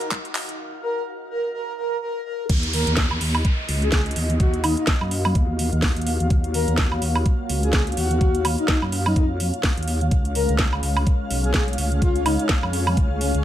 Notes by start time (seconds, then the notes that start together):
Already playing: A#3 D#4 F#4 D#5 F5
0.01 closed hi-hat
0.11 kick, clap, closed hi-hat
0.25 closed hi-hat
0.35 clap, open hi-hat
0.49 closed hi-hat
0.83 A#4
1.30 A#4
1.54 A#4
1.78 A#4
2.02 A#4
2.26 A#4
2.50 D#2 A#3 F#4 D#5 F5, kick, closed hi-hat, crash, downlifter
2.63 closed hi-hat
2.73 A#4, open hi-hat
2.87 D#2, closed hi-hat
2.97 kick, snare, closed hi-hat
3.11 high woodblock
3.21 D#2, open hi-hat
3.35 high woodblock
3.45 kick, closed hi-hat
3.69 C#2, open hi-hat
3.82 G#4, closed hi-hat
3.87 F5
3.92 G#4, kick, snare, closed hi-hat
4.06 closed hi-hat
4.11 closed hi-hat
4.16 D#2, open hi-hat
4.30 closed hi-hat
4.40 D#2 F#4, kick, closed hi-hat
4.54 closed hi-hat
4.64 D#4, open hi-hat, high woodblock
4.77 D#4, closed hi-hat
4.87 kick, snare, closed hi-hat
5.01 F#2, high woodblock
5.11 open hi-hat
5.25 high woodblock
5.35 D#2, kick, closed hi-hat
5.59 open hi-hat
5.73 D#2, closed hi-hat
5.82 kick, snare, open hi-hat
5.96 D#2, closed hi-hat
6.02 closed hi-hat
6.07 open hi-hat
6.20 D#2, closed hi-hat
6.30 D#2 C#5, kick, closed hi-hat
6.44 closed hi-hat
6.54 A#4, open hi-hat
6.68 D#2, closed hi-hat
6.78 kick, snare, closed hi-hat
6.92 high woodblock
7.02 D#2, open hi-hat
7.15 high woodblock
7.26 kick, closed hi-hat
7.49 C#2, open hi-hat
7.63 G#4, closed hi-hat
7.73 G#4, kick, snare, closed hi-hat
7.87 closed hi-hat
7.92 closed hi-hat
7.97 D#2 F#4, open hi-hat
8.11 closed hi-hat
8.21 D#2, kick, closed hi-hat
8.35 closed hi-hat
8.45 open hi-hat, high woodblock
8.58 D#4, closed hi-hat
8.68 kick, snare, closed hi-hat
8.82 F#2, high woodblock
8.92 open hi-hat
9.06 D#4, high woodblock
9.16 F2 D#4, kick, closed hi-hat
9.40 open hi-hat
9.54 closed hi-hat
9.63 kick, snare, open hi-hat
9.77 D#2, closed hi-hat
9.83 closed hi-hat
9.88 open hi-hat
10.01 closed hi-hat
10.11 C#2 G#3 C#4 F5, kick, closed hi-hat
10.25 closed hi-hat
10.35 A#4, open hi-hat
10.49 C#2, closed hi-hat
10.59 kick, snare, closed hi-hat
10.71 G#4, high woodblock
10.83 C#2, open hi-hat
10.97 high woodblock
11.07 kick, closed hi-hat
11.30 B1, open hi-hat
11.44 G#4, closed hi-hat
11.54 G#4, kick, snare, closed hi-hat
11.68 closed hi-hat
11.73 closed hi-hat
11.78 C#2, open hi-hat
11.92 closed hi-hat
12.02 C#2 F4, kick, closed hi-hat
12.16 closed hi-hat
12.26 D#4, open hi-hat, high woodblock
12.39 D#4, closed hi-hat
12.49 kick, snare, closed hi-hat
12.63 F2, high woodblock
12.73 open hi-hat
12.87 high woodblock
12.97 C#2, kick, closed hi-hat
13.21 open hi-hat
13.35 C#2, closed hi-hat